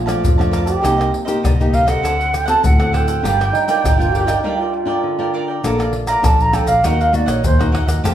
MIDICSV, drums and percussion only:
0, 0, Header, 1, 4, 480
1, 0, Start_track
1, 0, Key_signature, -2, "minor"
1, 0, Tempo, 600601
1, 668, Time_signature, 4, 2, 24, 8
1, 6507, End_track
2, 0, Start_track
2, 0, Title_t, "Pandeiro"
2, 68, Note_on_c, 9, 54, 65
2, 148, Note_off_c, 9, 54, 0
2, 196, Note_on_c, 9, 54, 82
2, 276, Note_off_c, 9, 54, 0
2, 327, Note_on_c, 9, 54, 33
2, 407, Note_off_c, 9, 54, 0
2, 426, Note_on_c, 9, 54, 62
2, 506, Note_off_c, 9, 54, 0
2, 537, Note_on_c, 9, 54, 66
2, 617, Note_off_c, 9, 54, 0
2, 676, Note_on_c, 9, 54, 82
2, 756, Note_off_c, 9, 54, 0
2, 806, Note_on_c, 9, 54, 36
2, 886, Note_off_c, 9, 54, 0
2, 912, Note_on_c, 9, 54, 55
2, 991, Note_off_c, 9, 54, 0
2, 1023, Note_on_c, 9, 54, 65
2, 1103, Note_off_c, 9, 54, 0
2, 1157, Note_on_c, 9, 54, 83
2, 1237, Note_off_c, 9, 54, 0
2, 1286, Note_on_c, 9, 54, 35
2, 1366, Note_off_c, 9, 54, 0
2, 1388, Note_on_c, 9, 54, 58
2, 1468, Note_off_c, 9, 54, 0
2, 1500, Note_on_c, 9, 54, 71
2, 1580, Note_off_c, 9, 54, 0
2, 1637, Note_on_c, 9, 54, 72
2, 1717, Note_off_c, 9, 54, 0
2, 1764, Note_on_c, 9, 54, 35
2, 1843, Note_off_c, 9, 54, 0
2, 1871, Note_on_c, 9, 54, 59
2, 1950, Note_off_c, 9, 54, 0
2, 1981, Note_on_c, 9, 54, 68
2, 2061, Note_off_c, 9, 54, 0
2, 2110, Note_on_c, 9, 54, 80
2, 2190, Note_off_c, 9, 54, 0
2, 2236, Note_on_c, 9, 54, 31
2, 2316, Note_off_c, 9, 54, 0
2, 2351, Note_on_c, 9, 54, 57
2, 2431, Note_off_c, 9, 54, 0
2, 2462, Note_on_c, 9, 54, 68
2, 2542, Note_off_c, 9, 54, 0
2, 2600, Note_on_c, 9, 54, 86
2, 2679, Note_off_c, 9, 54, 0
2, 2727, Note_on_c, 9, 54, 35
2, 2807, Note_off_c, 9, 54, 0
2, 2836, Note_on_c, 9, 54, 58
2, 2916, Note_off_c, 9, 54, 0
2, 2945, Note_on_c, 9, 54, 61
2, 3025, Note_off_c, 9, 54, 0
2, 3080, Note_on_c, 9, 54, 83
2, 3160, Note_off_c, 9, 54, 0
2, 3205, Note_on_c, 9, 54, 33
2, 3285, Note_off_c, 9, 54, 0
2, 3316, Note_on_c, 9, 54, 60
2, 3396, Note_off_c, 9, 54, 0
2, 3422, Note_on_c, 9, 54, 62
2, 3502, Note_off_c, 9, 54, 0
2, 4510, Note_on_c, 9, 54, 86
2, 4590, Note_off_c, 9, 54, 0
2, 4634, Note_on_c, 9, 54, 36
2, 4714, Note_off_c, 9, 54, 0
2, 4738, Note_on_c, 9, 54, 59
2, 4818, Note_off_c, 9, 54, 0
2, 4854, Note_on_c, 9, 54, 64
2, 4934, Note_off_c, 9, 54, 0
2, 4987, Note_on_c, 9, 54, 82
2, 5067, Note_off_c, 9, 54, 0
2, 5116, Note_on_c, 9, 54, 34
2, 5196, Note_off_c, 9, 54, 0
2, 5223, Note_on_c, 9, 54, 61
2, 5303, Note_off_c, 9, 54, 0
2, 5334, Note_on_c, 9, 54, 68
2, 5414, Note_off_c, 9, 54, 0
2, 5468, Note_on_c, 9, 54, 78
2, 5548, Note_off_c, 9, 54, 0
2, 5599, Note_on_c, 9, 54, 36
2, 5679, Note_off_c, 9, 54, 0
2, 5706, Note_on_c, 9, 54, 57
2, 5785, Note_off_c, 9, 54, 0
2, 5819, Note_on_c, 9, 54, 73
2, 5899, Note_off_c, 9, 54, 0
2, 5947, Note_on_c, 9, 54, 82
2, 6027, Note_off_c, 9, 54, 0
2, 6079, Note_on_c, 9, 54, 34
2, 6159, Note_off_c, 9, 54, 0
2, 6191, Note_on_c, 9, 54, 61
2, 6271, Note_off_c, 9, 54, 0
2, 6302, Note_on_c, 9, 54, 71
2, 6382, Note_off_c, 9, 54, 0
2, 6435, Note_on_c, 9, 54, 90
2, 6507, Note_off_c, 9, 54, 0
2, 6507, End_track
3, 0, Start_track
3, 0, Title_t, "Tamborim"
3, 68, Note_on_c, 9, 60, 81
3, 148, Note_off_c, 9, 60, 0
3, 327, Note_on_c, 9, 60, 74
3, 407, Note_off_c, 9, 60, 0
3, 426, Note_on_c, 9, 60, 81
3, 506, Note_off_c, 9, 60, 0
3, 676, Note_on_c, 9, 60, 88
3, 756, Note_off_c, 9, 60, 0
3, 806, Note_on_c, 9, 60, 91
3, 886, Note_off_c, 9, 60, 0
3, 1157, Note_on_c, 9, 60, 84
3, 1237, Note_off_c, 9, 60, 0
3, 1500, Note_on_c, 9, 60, 78
3, 1580, Note_off_c, 9, 60, 0
3, 1637, Note_on_c, 9, 60, 78
3, 1717, Note_off_c, 9, 60, 0
3, 1871, Note_on_c, 9, 60, 76
3, 1950, Note_off_c, 9, 60, 0
3, 1981, Note_on_c, 9, 60, 80
3, 2061, Note_off_c, 9, 60, 0
3, 2236, Note_on_c, 9, 60, 73
3, 2316, Note_off_c, 9, 60, 0
3, 2351, Note_on_c, 9, 60, 82
3, 2431, Note_off_c, 9, 60, 0
3, 2600, Note_on_c, 9, 60, 83
3, 2679, Note_off_c, 9, 60, 0
3, 2727, Note_on_c, 9, 60, 85
3, 2807, Note_off_c, 9, 60, 0
3, 3080, Note_on_c, 9, 60, 87
3, 3160, Note_off_c, 9, 60, 0
3, 3422, Note_on_c, 9, 60, 84
3, 3502, Note_off_c, 9, 60, 0
3, 4510, Note_on_c, 9, 60, 83
3, 4590, Note_off_c, 9, 60, 0
3, 4634, Note_on_c, 9, 60, 87
3, 4714, Note_off_c, 9, 60, 0
3, 4854, Note_on_c, 9, 60, 78
3, 4934, Note_off_c, 9, 60, 0
3, 4987, Note_on_c, 9, 60, 82
3, 5067, Note_off_c, 9, 60, 0
3, 5223, Note_on_c, 9, 60, 81
3, 5303, Note_off_c, 9, 60, 0
3, 5468, Note_on_c, 9, 60, 79
3, 5548, Note_off_c, 9, 60, 0
3, 5819, Note_on_c, 9, 60, 85
3, 5899, Note_off_c, 9, 60, 0
3, 6079, Note_on_c, 9, 60, 82
3, 6159, Note_off_c, 9, 60, 0
3, 6191, Note_on_c, 9, 60, 89
3, 6271, Note_off_c, 9, 60, 0
3, 6302, Note_on_c, 9, 60, 84
3, 6382, Note_off_c, 9, 60, 0
3, 6435, Note_on_c, 9, 60, 86
3, 6507, Note_off_c, 9, 60, 0
3, 6507, End_track
4, 0, Start_track
4, 0, Title_t, "Drums"
4, 68, Note_on_c, 9, 82, 76
4, 148, Note_off_c, 9, 82, 0
4, 196, Note_on_c, 9, 82, 76
4, 196, Note_on_c, 9, 87, 96
4, 276, Note_off_c, 9, 82, 0
4, 276, Note_off_c, 9, 87, 0
4, 327, Note_on_c, 9, 82, 34
4, 407, Note_off_c, 9, 82, 0
4, 426, Note_on_c, 9, 82, 69
4, 506, Note_off_c, 9, 82, 0
4, 537, Note_on_c, 9, 82, 81
4, 617, Note_off_c, 9, 82, 0
4, 676, Note_on_c, 9, 82, 85
4, 676, Note_on_c, 9, 87, 59
4, 756, Note_off_c, 9, 82, 0
4, 756, Note_off_c, 9, 87, 0
4, 806, Note_on_c, 9, 82, 36
4, 886, Note_off_c, 9, 82, 0
4, 1023, Note_on_c, 9, 82, 76
4, 1103, Note_off_c, 9, 82, 0
4, 1157, Note_on_c, 9, 82, 80
4, 1157, Note_on_c, 9, 87, 100
4, 1237, Note_off_c, 9, 82, 0
4, 1237, Note_off_c, 9, 87, 0
4, 1286, Note_on_c, 9, 82, 31
4, 1366, Note_off_c, 9, 82, 0
4, 1388, Note_on_c, 9, 87, 74
4, 1468, Note_off_c, 9, 87, 0
4, 1500, Note_on_c, 9, 82, 76
4, 1580, Note_off_c, 9, 82, 0
4, 1637, Note_on_c, 9, 82, 78
4, 1637, Note_on_c, 9, 87, 52
4, 1717, Note_off_c, 9, 82, 0
4, 1717, Note_off_c, 9, 87, 0
4, 1764, Note_on_c, 9, 82, 35
4, 1843, Note_off_c, 9, 82, 0
4, 1871, Note_on_c, 9, 82, 65
4, 1950, Note_off_c, 9, 82, 0
4, 1981, Note_on_c, 9, 82, 81
4, 2061, Note_off_c, 9, 82, 0
4, 2110, Note_on_c, 9, 82, 81
4, 2110, Note_on_c, 9, 87, 101
4, 2190, Note_off_c, 9, 82, 0
4, 2190, Note_off_c, 9, 87, 0
4, 2236, Note_on_c, 9, 82, 33
4, 2316, Note_off_c, 9, 82, 0
4, 2462, Note_on_c, 9, 82, 77
4, 2542, Note_off_c, 9, 82, 0
4, 2600, Note_on_c, 9, 82, 85
4, 2600, Note_on_c, 9, 87, 57
4, 2679, Note_off_c, 9, 82, 0
4, 2679, Note_off_c, 9, 87, 0
4, 2727, Note_on_c, 9, 82, 36
4, 2807, Note_off_c, 9, 82, 0
4, 2945, Note_on_c, 9, 82, 75
4, 3025, Note_off_c, 9, 82, 0
4, 3080, Note_on_c, 9, 82, 80
4, 3080, Note_on_c, 9, 87, 94
4, 3160, Note_off_c, 9, 82, 0
4, 3160, Note_off_c, 9, 87, 0
4, 3205, Note_on_c, 9, 82, 33
4, 3285, Note_off_c, 9, 82, 0
4, 3422, Note_on_c, 9, 82, 81
4, 3502, Note_off_c, 9, 82, 0
4, 4510, Note_on_c, 9, 82, 82
4, 4510, Note_on_c, 9, 87, 63
4, 4590, Note_off_c, 9, 82, 0
4, 4590, Note_off_c, 9, 87, 0
4, 4634, Note_on_c, 9, 82, 37
4, 4714, Note_off_c, 9, 82, 0
4, 4854, Note_on_c, 9, 82, 81
4, 4934, Note_off_c, 9, 82, 0
4, 4987, Note_on_c, 9, 82, 80
4, 4987, Note_on_c, 9, 87, 105
4, 5067, Note_off_c, 9, 82, 0
4, 5067, Note_off_c, 9, 87, 0
4, 5116, Note_on_c, 9, 82, 33
4, 5196, Note_off_c, 9, 82, 0
4, 5223, Note_on_c, 9, 82, 73
4, 5303, Note_off_c, 9, 82, 0
4, 5334, Note_on_c, 9, 82, 89
4, 5414, Note_off_c, 9, 82, 0
4, 5468, Note_on_c, 9, 82, 86
4, 5468, Note_on_c, 9, 87, 54
4, 5548, Note_off_c, 9, 82, 0
4, 5548, Note_off_c, 9, 87, 0
4, 5599, Note_on_c, 9, 82, 34
4, 5679, Note_off_c, 9, 82, 0
4, 5706, Note_on_c, 9, 82, 69
4, 5785, Note_off_c, 9, 82, 0
4, 5819, Note_on_c, 9, 82, 82
4, 5899, Note_off_c, 9, 82, 0
4, 5947, Note_on_c, 9, 82, 83
4, 5947, Note_on_c, 9, 87, 103
4, 6027, Note_off_c, 9, 82, 0
4, 6027, Note_off_c, 9, 87, 0
4, 6079, Note_on_c, 9, 82, 36
4, 6159, Note_off_c, 9, 82, 0
4, 6302, Note_on_c, 9, 82, 86
4, 6382, Note_off_c, 9, 82, 0
4, 6435, Note_on_c, 9, 82, 85
4, 6435, Note_on_c, 9, 87, 64
4, 6507, Note_off_c, 9, 82, 0
4, 6507, Note_off_c, 9, 87, 0
4, 6507, End_track
0, 0, End_of_file